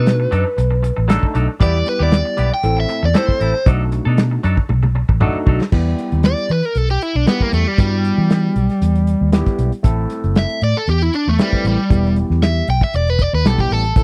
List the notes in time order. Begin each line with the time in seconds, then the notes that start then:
Already playing: B2 A3 D4 D#4 F#4 B4
0.06 snare, closed hi-hat
0.20 muted clean electric guitar stroke
0.31 F#2 F#3 D4 D#4 A4, closed hi-hat
0.45 muted clean electric guitar stroke
0.57 B1, muted clean electric guitar stroke, closed hi-hat
0.71 muted clean electric guitar stroke
0.83 muted clean electric guitar stroke, closed hi-hat
0.97 A1, muted clean electric guitar stroke
1.08 F#3 A3 D4 D#4 A4, snare, closed hi-hat
1.23 kick
1.34 B1 F#3 D4 D#4 A4, closed hi-hat
1.48 muted clean electric guitar stroke
1.60 E2 G3 B3 E4 G4 D5, kick, closed hi-hat
1.75 snare
1.86 B4, muted clean electric guitar stroke, closed hi-hat
1.99 D#2 B3 E4 G4 D5
2.12 snare, closed hi-hat
2.25 muted clean electric guitar stroke
2.37 B1 G3 B3 E4 G4, closed hi-hat
2.51 G5, muted clean electric guitar stroke
2.63 A1 A3 C4 E4 A4, muted clean electric guitar stroke, closed hi-hat
2.77 E5, muted clean electric guitar stroke
2.89 muted clean electric guitar stroke, closed hi-hat
3.03 E2 D5, muted clean electric guitar stroke
3.14 A3 C4 E4 A4 C5, snare, closed hi-hat
3.28 muted fingered electric bass stroke, kick
3.40 A1 C4 E4 A4, closed hi-hat
3.54 muted clean electric guitar stroke
3.66 B1 F#3 A3 D4 D#4 F#4 A4, kick, closed hi-hat
3.92 muted clean electric guitar stroke, closed hi-hat
4.05 B2 D4 D#4 A4
4.17 snare, closed hi-hat
4.31 muted clean electric guitar stroke
4.43 F#2 F#3 D4 D#4 A4, closed hi-hat
4.57 muted clean electric guitar stroke, kick
4.69 B1, muted clean electric guitar stroke, high tom
4.83 muted clean electric guitar stroke, high tom
4.95 muted clean electric guitar stroke
5.09 A1, muted clean electric guitar stroke, kick
5.20 F#3 A3 D4 D#4 F#4 A4, mid tom
5.35 muted fingered electric bass stroke
5.46 B1 F#3 D4 D#4 A4, kick
5.60 muted clean electric guitar stroke, snare
5.72 E2 G3 B3 E4 G4, kick, crash
5.98 snare, closed hi-hat
6.12 D#2, closed hi-hat
6.23 D5, snare, closed hi-hat
6.37 closed hi-hat
6.49 E3 B4, closed hi-hat
6.63 A#4, closed hi-hat
6.75 B1 A4, closed hi-hat
6.89 G4, closed hi-hat
7.01 E4, closed hi-hat
7.15 B1 D4
7.26 G3 B3 E4 G4, snare, closed hi-hat
7.40 A#3, muted fingered electric bass stroke, kick
7.53 E2 A3, closed hi-hat
7.68 G3
7.78 G2 G3 B3 E4 F#4, kick, closed hi-hat
8.05 closed hi-hat
8.18 E3
8.30 snare, closed hi-hat
8.56 B1, closed hi-hat
8.69 snare, closed hi-hat
8.82 E2, closed hi-hat
8.95 closed hi-hat
9.07 closed hi-hat
9.21 D#2
9.32 G3 B3 E4 G4, snare, closed hi-hat
9.46 kick, snare, closed hi-hat
9.59 B1, closed hi-hat
9.72 closed hi-hat
9.83 A1 A3 C4 E4 A4, kick, closed hi-hat
10.10 snare, closed hi-hat
10.24 F#1, closed hi-hat
10.35 E5, snare, closed hi-hat
10.49 closed hi-hat
10.61 A2 D5, closed hi-hat
10.75 A4, closed hi-hat
10.87 E2 G4, closed hi-hat
11.01 E4, closed hi-hat
11.13 D4, closed hi-hat
11.27 E2 A3
11.39 G3 A3 C4 E4 B4, snare, closed hi-hat
11.53 muted fingered electric bass stroke, kick, snare
11.64 A1 G3, closed hi-hat
11.90 E1 G3 B3 E4 G4, kick, closed hi-hat
12.05 snare
12.16 closed hi-hat
12.30 E2, snare
12.42 E5, snare, closed hi-hat
12.67 B1 G5, closed hi-hat
12.81 E5, kick, snare, closed hi-hat
12.93 E1 D5, closed hi-hat
13.07 B4, closed hi-hat
13.19 D5, kick, closed hi-hat
13.33 D#2 B4
13.45 B1 G3 B3 E4 G4 A4, snare, closed hi-hat
13.58 G4, kick, closed hi-hat
13.71 A1 A4, open hi-hat
13.84 closed hi-hat
13.96 A1 A3 C4 E4 A4, kick, closed hi-hat